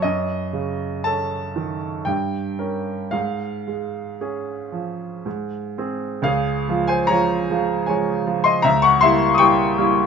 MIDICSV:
0, 0, Header, 1, 2, 480
1, 0, Start_track
1, 0, Key_signature, -5, "major"
1, 0, Tempo, 1011804
1, 12, Time_signature, 3, 2, 24, 8
1, 973, Tempo, 1071429
1, 1933, Tempo, 1034483
1, 2893, Tempo, 816327
1, 3853, Tempo, 751880
1, 5237, End_track
2, 0, Start_track
2, 0, Title_t, "Grand piano"
2, 0, Program_c, 0, 0
2, 0, Control_c, 0, 64, 127
2, 11, Note_on_c, 0, 75, 81
2, 19, Note_on_c, 0, 42, 58
2, 23, Control_c, 0, 64, 0
2, 116, Control_c, 0, 64, 127
2, 251, Note_on_c, 0, 49, 47
2, 494, Note_on_c, 0, 81, 82
2, 495, Note_off_c, 0, 75, 0
2, 500, Note_on_c, 0, 61, 40
2, 502, Note_on_c, 0, 69, 42
2, 643, Note_off_c, 0, 49, 0
2, 718, Note_off_c, 0, 61, 0
2, 719, Note_off_c, 0, 69, 0
2, 739, Note_on_c, 0, 51, 44
2, 958, Note_off_c, 0, 42, 0
2, 972, Note_off_c, 0, 81, 0
2, 972, Note_on_c, 0, 79, 69
2, 975, Note_off_c, 0, 51, 0
2, 979, Note_on_c, 0, 43, 49
2, 983, Control_c, 0, 64, 0
2, 1089, Control_c, 0, 64, 127
2, 1213, Note_on_c, 0, 61, 39
2, 1214, Note_on_c, 0, 70, 42
2, 1438, Note_off_c, 0, 61, 0
2, 1438, Note_off_c, 0, 70, 0
2, 1442, Note_off_c, 0, 43, 0
2, 1448, Note_on_c, 0, 77, 65
2, 1453, Note_off_c, 0, 79, 0
2, 1453, Note_on_c, 0, 44, 46
2, 1465, Control_c, 0, 64, 0
2, 1560, Control_c, 0, 64, 127
2, 1701, Note_on_c, 0, 56, 40
2, 1939, Note_on_c, 0, 61, 38
2, 1941, Note_on_c, 0, 68, 42
2, 2080, Note_off_c, 0, 56, 0
2, 2160, Note_off_c, 0, 61, 0
2, 2162, Note_off_c, 0, 68, 0
2, 2178, Note_on_c, 0, 53, 39
2, 2402, Note_off_c, 0, 44, 0
2, 2422, Note_off_c, 0, 53, 0
2, 2425, Note_on_c, 0, 44, 47
2, 2432, Control_c, 0, 64, 0
2, 2525, Control_c, 0, 64, 127
2, 2667, Note_off_c, 0, 77, 0
2, 2670, Note_on_c, 0, 60, 37
2, 2672, Note_on_c, 0, 68, 39
2, 2874, Note_off_c, 0, 60, 0
2, 2874, Note_on_c, 0, 37, 60
2, 2875, Note_off_c, 0, 68, 0
2, 2881, Note_off_c, 0, 44, 0
2, 2881, Note_on_c, 0, 77, 82
2, 2887, Note_on_c, 0, 68, 61
2, 2901, Control_c, 0, 64, 0
2, 2988, Control_c, 0, 64, 127
2, 3118, Note_off_c, 0, 37, 0
2, 3139, Note_on_c, 0, 53, 49
2, 3142, Note_on_c, 0, 56, 49
2, 3145, Note_on_c, 0, 65, 53
2, 3233, Note_off_c, 0, 68, 0
2, 3252, Note_off_c, 0, 77, 0
2, 3253, Note_on_c, 0, 80, 74
2, 3260, Note_on_c, 0, 72, 56
2, 3359, Note_off_c, 0, 53, 0
2, 3360, Note_off_c, 0, 56, 0
2, 3361, Note_off_c, 0, 65, 0
2, 3368, Note_on_c, 0, 82, 93
2, 3373, Note_off_c, 0, 72, 0
2, 3376, Note_on_c, 0, 73, 66
2, 3378, Note_off_c, 0, 80, 0
2, 3378, Note_on_c, 0, 53, 51
2, 3380, Note_on_c, 0, 56, 47
2, 3385, Note_on_c, 0, 65, 51
2, 3598, Note_off_c, 0, 53, 0
2, 3599, Note_off_c, 0, 56, 0
2, 3601, Note_off_c, 0, 65, 0
2, 3622, Note_on_c, 0, 53, 48
2, 3622, Note_on_c, 0, 56, 46
2, 3627, Note_on_c, 0, 65, 55
2, 3827, Note_off_c, 0, 73, 0
2, 3829, Note_off_c, 0, 53, 0
2, 3829, Note_off_c, 0, 56, 0
2, 3832, Note_off_c, 0, 65, 0
2, 3834, Note_on_c, 0, 80, 61
2, 3842, Note_on_c, 0, 73, 54
2, 3846, Note_off_c, 0, 82, 0
2, 3848, Note_on_c, 0, 56, 47
2, 3849, Note_on_c, 0, 53, 41
2, 3853, Note_on_c, 0, 65, 48
2, 4064, Note_off_c, 0, 56, 0
2, 4065, Note_off_c, 0, 53, 0
2, 4067, Note_off_c, 0, 65, 0
2, 4086, Note_on_c, 0, 53, 47
2, 4088, Note_on_c, 0, 56, 47
2, 4091, Note_on_c, 0, 65, 59
2, 4178, Note_off_c, 0, 73, 0
2, 4199, Note_off_c, 0, 80, 0
2, 4200, Note_on_c, 0, 84, 88
2, 4210, Note_on_c, 0, 75, 72
2, 4303, Note_off_c, 0, 53, 0
2, 4304, Note_off_c, 0, 56, 0
2, 4306, Note_off_c, 0, 65, 0
2, 4318, Note_on_c, 0, 82, 95
2, 4321, Note_off_c, 0, 75, 0
2, 4325, Note_off_c, 0, 84, 0
2, 4329, Note_on_c, 0, 76, 75
2, 4330, Note_on_c, 0, 37, 72
2, 4341, Control_c, 0, 64, 0
2, 4434, Control_c, 0, 64, 127
2, 4443, Note_off_c, 0, 76, 0
2, 4444, Note_on_c, 0, 85, 103
2, 4446, Note_off_c, 0, 82, 0
2, 4452, Note_on_c, 0, 78, 70
2, 4563, Note_on_c, 0, 84, 104
2, 4565, Note_off_c, 0, 78, 0
2, 4566, Note_off_c, 0, 37, 0
2, 4570, Note_off_c, 0, 85, 0
2, 4573, Note_on_c, 0, 55, 53
2, 4573, Note_on_c, 0, 76, 76
2, 4574, Note_on_c, 0, 58, 55
2, 4577, Note_on_c, 0, 64, 61
2, 4760, Note_off_c, 0, 76, 0
2, 4770, Note_off_c, 0, 84, 0
2, 4778, Note_on_c, 0, 87, 63
2, 4791, Note_off_c, 0, 55, 0
2, 4792, Note_off_c, 0, 58, 0
2, 4794, Note_off_c, 0, 64, 0
2, 4800, Note_on_c, 0, 85, 104
2, 4805, Note_on_c, 0, 79, 76
2, 4810, Note_on_c, 0, 55, 57
2, 4816, Note_on_c, 0, 64, 51
2, 4817, Note_off_c, 0, 87, 0
2, 4817, Note_on_c, 0, 58, 49
2, 5027, Note_off_c, 0, 55, 0
2, 5030, Note_off_c, 0, 64, 0
2, 5031, Note_off_c, 0, 58, 0
2, 5057, Note_on_c, 0, 55, 57
2, 5058, Note_on_c, 0, 58, 56
2, 5061, Note_on_c, 0, 64, 61
2, 5237, Note_off_c, 0, 55, 0
2, 5237, Note_off_c, 0, 58, 0
2, 5237, Note_off_c, 0, 64, 0
2, 5237, Note_off_c, 0, 79, 0
2, 5237, Note_off_c, 0, 85, 0
2, 5237, End_track
0, 0, End_of_file